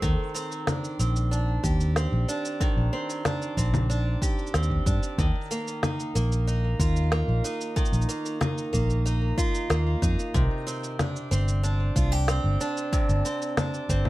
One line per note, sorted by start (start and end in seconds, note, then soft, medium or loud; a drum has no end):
0.00 0.14 D#2 medium
0.00 2.60 D#3 medium
0.00 0.34 C4 medium
0.00 kick loud
0.00 shaker soft
0.34 0.98 C4 medium
0.34 shaker medium
0.52 shaker soft
0.67 1.30 D4 medium
0.67 snare loud
0.67 low conga medium
0.67 shaker soft
0.84 shaker soft
0.99 1.57 A#1 medium
0.99 1.95 C4 medium
0.99 shaker medium
1.16 shaker soft
1.31 2.27 D4 medium
1.31 shaker soft
1.64 2.06 D#2 medium
1.64 4.21 G4 medium
1.64 kick loud
1.64 shaker medium
1.81 shaker soft
1.96 2.92 C4 medium
1.96 snare loud
1.96 shaker soft
2.12 2.24 A#1 medium
2.28 3.24 D4 medium
2.28 shaker medium
2.45 shaker soft
2.60 5.18 D#3 medium
2.60 kick loud
2.60 shaker soft
2.77 2.89 A#1 medium
2.93 3.56 C4 medium
3.10 shaker soft
3.25 3.88 D4 medium
3.25 snare medium
3.25 low conga medium
3.25 shaker soft
3.42 shaker soft
3.57 4.15 A#1 medium
3.57 4.53 C4 medium
3.57 kick medium
3.57 shaker medium
3.74 low conga medium
3.74 shaker soft
3.90 4.85 D4 medium
3.90 shaker soft
4.22 5.25 G4 medium
4.22 kick loud
4.22 shaker medium
4.39 shaker soft
4.47 shaker soft
4.54 4.78 D#2 medium
4.54 5.25 C4 medium
4.54 snare medium
4.54 shaker soft
4.63 shaker soft
4.70 kick medium
4.86 4.98 G2 medium
4.86 5.25 D4 medium
4.86 kick medium
4.86 shaker medium
5.03 shaker soft
5.18 5.30 D#2 medium
5.18 7.76 D#3 medium
5.18 kick loud
5.18 shaker soft
5.51 6.14 A#3 medium
5.51 shaker medium
5.68 shaker soft
5.83 6.47 D#4 medium
5.83 snare loud
5.83 low conga medium
5.83 shaker soft
6.00 shaker soft
6.15 6.73 A#1 medium
6.15 7.11 A#3 medium
6.15 shaker medium
6.32 shaker soft
6.47 7.44 D#4 medium
6.47 shaker soft
6.79 7.21 D#2 loud
6.79 9.36 F4 medium
6.79 kick loud
6.79 shaker medium
6.97 shaker soft
7.12 8.07 A#3 medium
7.12 snare medium
7.28 7.40 A#1 medium
7.44 8.40 D#4 medium
7.44 shaker medium
7.61 shaker soft
7.76 11.02 D#3 medium
7.76 kick loud
7.76 shaker soft
7.85 shaker soft
7.92 8.05 A#1 medium
7.92 shaker soft
8.02 shaker soft
8.09 8.72 A#3 medium
8.09 shaker medium
8.26 shaker soft
8.41 9.05 D#4 medium
8.41 snare medium
8.41 low conga medium
8.41 shaker soft
8.58 shaker soft
8.73 9.31 A#1 medium
8.73 9.69 A#3 medium
8.73 kick medium
8.73 shaker medium
8.90 shaker soft
9.06 10.02 D#4 medium
9.06 shaker soft
9.38 10.41 F4 medium
9.38 kick loud
9.38 shaker medium
9.55 shaker soft
9.70 9.94 D#2 medium
9.70 10.41 A#3 medium
9.70 snare medium
9.70 shaker soft
10.02 10.14 F2 medium
10.02 10.99 D#4 medium
10.02 kick medium
10.02 shaker medium
10.19 shaker soft
10.34 10.47 C2 medium
10.34 12.92 C3 medium
10.34 kick loud
10.34 shaker soft
10.67 11.30 C4 medium
10.67 shaker medium
10.84 shaker soft
10.99 11.62 D4 medium
10.99 snare medium
10.99 low conga medium
10.99 shaker soft
11.16 shaker soft
11.31 11.89 G1 medium
11.31 12.27 C4 medium
11.31 shaker medium
11.48 shaker soft
11.63 12.59 D4 medium
11.63 shaker soft
11.96 12.38 C2 loud
11.96 12.12 F4 medium
11.96 kick loud
11.96 shaker medium
12.12 14.09 G4 medium
12.12 shaker soft
12.28 13.24 C4 medium
12.28 snare medium
12.28 shaker soft
12.44 12.56 G1 medium
12.61 13.56 D4 medium
12.61 shaker medium
12.77 shaker soft
12.93 14.09 C3 medium
12.93 kick loud
12.93 shaker soft
13.09 13.21 G1 medium
13.09 shaker soft
13.25 13.88 C4 medium
13.25 shaker medium
13.42 shaker soft
13.57 14.09 D4 medium
13.57 snare loud
13.57 low conga medium
13.57 shaker soft
13.74 shaker soft
13.89 14.09 G1 medium
13.89 14.09 C4 medium
13.89 kick medium
13.89 shaker medium
14.05 low conga medium